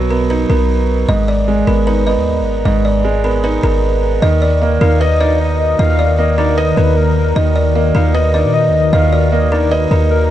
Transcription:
Already playing: B1 B2 F#3 B3 D#4
0.10 B3 A#4
0.30 D#4 B4
0.50 B1 B3 A#4
1.09 G#1 G#2 D#5
1.28 D5
1.48 G#3
1.67 G#1 B3 A#4
1.87 D#4 B4
2.07 B3 D#5
2.17 D#2
2.41 G#1
2.65 G#1 G#2 D#5
2.85 D5
3.04 G#3
3.24 B3 A#4
3.44 D#4 B4
3.63 G#1 B3 A#4
4.22 D#2 D#3 D#4 F#4 A#4 D#5
4.42 D5
4.62 A#3
4.81 D#2 D#4 A#4 F5
5.01 B4 D#5
5.20 D#4 D5 D#5
5.40 D#5
5.60 D#5
5.79 D#2 D#3 D#5 F5
5.99 D5
6.18 A#3 D#5
6.38 D#4 A#4 D5
6.57 B4 D#5
6.77 D#2 D#4 A#4 B4
6.97 A#4
7.17 A#4
7.36 D#2 D#3 D#5
7.56 D5
7.75 A#3
7.95 D#2 D#4 A#4 F5
8.14 B4 D#5
8.34 D#4 D5 D#5
8.45 A#2
8.54 D#5
8.69 D#2
8.73 D#5
8.93 D#2 D#3 D#5 F5
9.13 D5
9.32 A#3 D#5
9.52 D#4 A#4 D5
9.71 B4 D#5
9.91 D#2 D#4 A#4
10.11 A#4

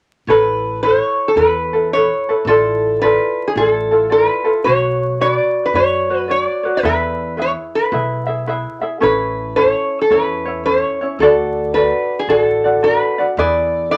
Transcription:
0.27 A1 E4 A4 B4 C#5
0.83 E4 A4 B4 C5 C#5
1.00 C#5
1.28 A4
1.36 E2 E4 A4 B4 C#5
1.73 E4 A4 B4
1.93 E4 A4 B4 C#5
2.29 E4 A4 B4
2.45 A1 F4 A4 D5
2.49 E4 A4
3.01 E4 F4 A4 B4 D5
3.48 G#4
3.56 A1 E4 F4 G#4 A4 D5
3.68 A4
3.91 E4 F4 A4
4.10 E4 F4 A4 B4 D5
4.44 E4 F4 A4
4.64 B1 F#4 B4 C#5
5.20 F#4 B4 C#5 D5
5.33 D5
5.66 B4
5.74 F#2 F#4 B4 C#5 D5
6.10 F#4 B4 C#5
6.19 B4
6.28 F#4 B4 C#5 D5
6.42 D5
6.63 F#4 B4 C#5
6.77 B4
6.83 E2 E4 G#4 B4 E5
7.37 E4 G#4 B4 E5
7.42 C#5
7.75 B4
7.92 B1 E4 G#4 B4 E5
8.27 E4 G#4 E5
8.47 E4 G#4 B4 E5
8.81 E4 G#4 E5
9.00 A1 C#4 E4 A4 B4 C#5
9.56 C#4 E4 A4 C#5
10.01 A4
10.10 E2 C#4 E4 A4 B4 C#5
10.45 C#4 E4 C#5
10.66 C#4 E4 A4 C#5
11.01 C#4 E4 C#5
11.19 D2 D4 F#4 A4
11.23 D5
11.74 D4 F#4 A4 B4 D5
12.19 G#4
12.27 A1 D4 F#4 G#4 A4 D5
12.41 A4
12.64 D4 F#4 D5
12.83 D4 F#4 A4 B4 D5
13.18 D4 F#4 D5
13.37 E2 E4 G#4 B4 D5 E5
13.91 E4 G#4 B4 D#5 E5

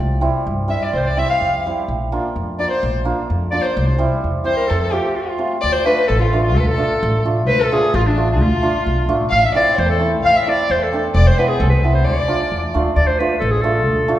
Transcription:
0.00 C2
0.21 G3 C4 E4
0.47 G2
0.68 G3 C4 E4 E5
0.78 E5
0.82 D5
0.93 C2 C5
0.99 C5 D5
1.05 D5
1.17 G3 C4 E4 E5
1.29 F5
1.41 F2
1.66 G3 C4 E4
1.88 A#1
2.12 A#3 D4 F4
2.36 F2
2.58 A#3 D4 F4 D5
2.70 C5
2.83 A#1
3.05 A#3 D4 F4
3.30 F2
3.51 A#3 D4 F4 D5
3.62 C5
3.77 C2
3.98 G3 C4 E4
4.24 E2
4.44 G3 C4 E4 C5
4.57 A#4
4.68 F2 A4
4.80 A4
4.92 A3 C4 F4 G4
5.15 F4
5.21 G4
5.29 F4
5.38 A3 C4 F4
5.61 D2 D5
5.72 C5
5.85 A3 D4 F4 B4
6.08 A1 A4
6.20 F4
6.33 A3 D4 F4
6.43 F4
6.55 D2 A4
6.60 B4
6.67 A4
6.78 A3 D4 F4
7.03 A1
7.25 A3 D4 F4
7.47 D2 B4 C5
7.60 A4
7.72 A3 D4 F4 G#4
7.93 A1 F4
8.07 D4
8.17 A3 D4 F4
8.31 D4 G#4
8.39 D2 F4
8.62 A3 D4 F4
8.86 B1
9.09 A1 A3 D4 F4
9.29 A1 F5
9.41 E5
9.45 E5
9.52 A3 C4 E4 D5
9.76 E2 C5
9.86 A4
9.90 A4
9.99 A3 C4 E4
10.22 A1 F5
10.34 E5
10.46 A3 C4 E4 D5
10.70 E2 C5
10.81 A4
10.93 A3 C4 D4
11.14 E1 D5
11.27 C5
11.38 G#3 B3 E4 B4
11.49 G#4
11.60 C2 A4
11.69 B4
11.84 G#3 B3 E4
11.93 C5
12.05 D2 D5
12.28 A3 D4 F4
12.52 E2
12.74 D2 A3 D4 F4
12.96 D2 D5
13.07 C5
13.19 A3 D4 F4 B4
13.38 A1 A4 B4
13.51 G#4
13.61 A3 D4 F4 A4
13.86 D2
14.08 A3 D4 F4

